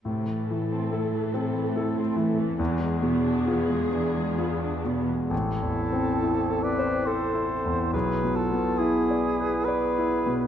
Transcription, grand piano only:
X:1
M:3/4
L:1/8
Q:1/4=69
K:Am
V:1 name="Grand piano"
A,, E, [EA] C [EA] E, | E,, B,, [F^G] D [FG] B,, | (3A,,, E,, C (3E A c (3A E E,, | (3B,,, B,, B, (3E d B (3d E B,, |]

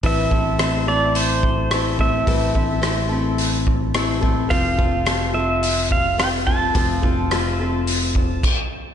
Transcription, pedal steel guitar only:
X:1
M:4/4
L:1/8
Q:1/4=107
K:Am
V:1 name="Pedal steel guitar"
e3 d c3 e- | e2 z6 | f3 e2 f g a- | a6- a z |]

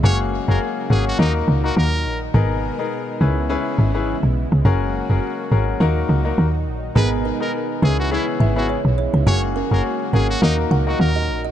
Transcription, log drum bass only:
X:1
M:4/4
L:1/16
Q:"Swing 16ths" 1/4=104
K:F#mix
V:1 name="Log drum bass" clef=bass
F,,,3 F,,, z2 G,,,2 D,,2 C,,2 D,,2 A,,,2 | G,,,3 z3 C,,3 z G,,,3 B,,,2 C,, | F,,,3 F,,, z2 G,,,2 D,,2 C,,2 D,,2 A,,,2 | G,,,3 z3 C,,3 z G,,,3 B,,,2 C,, |
F,,,3 F,,, z2 G,,,2 D,,2 C,,2 D,,2 A,,,2 |]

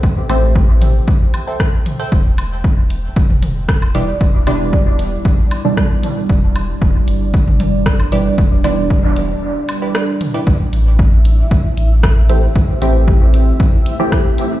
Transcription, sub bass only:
X:1
M:4/4
L:1/8
Q:1/4=115
K:Am
V:1 name="Sub bass" clef=bass
A,,,4 z4 | E,,,4 E,,,4 | E,,,4 z4 | E,,,2 E,,, G,,,4- G,,, |
E,,,4 z4 | A,,,4 A,,,4 | A,,,4 z4 |]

